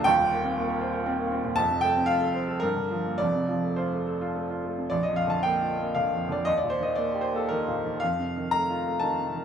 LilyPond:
<<
  \new Staff \with { instrumentName = "Grand piano" } { \time 3/4 \key bes \major \tempo 4 = 116 g''2. | a''8 g''8 f''4 bes'4 | d''4 c''4 r4 | d''16 ees''16 f''16 a''16 g''4 f''8. d''16 |
ees''16 d''16 c''16 ees''16 d''8 c''16 a'16 bes'4 | f''4 bes''4 a''4 | }
  \new Staff \with { instrumentName = "Grand piano" } { \clef bass \time 3/4 \key bes \major <ees,, ees,>16 bes,16 bes16 c'16 bes16 bes'16 c''16 bes'16 c'16 bes16 c'16 bes,16 | <f,, f,>16 c16 a16 c'16 f'16 a'16 c''16 a'16 g,16 d16 f16 bes16 | <f,, f,>16 c16 f16 a16 f'16 a16 a'16 f'16 a16 f'16 a16 c16 | \tuplet 3/2 { bes,,8 f,8 d8 bes8 f'8 bes8 d8 f,8 d8 } |
\tuplet 3/2 { ees,8 bes,8 ees8 bes8 g'8 bes8 ees8 bes,8 ees8 } | \tuplet 3/2 { f,8 c8 ees8 a8 f'8 a8 ees8 c8 ees8 } | }
>>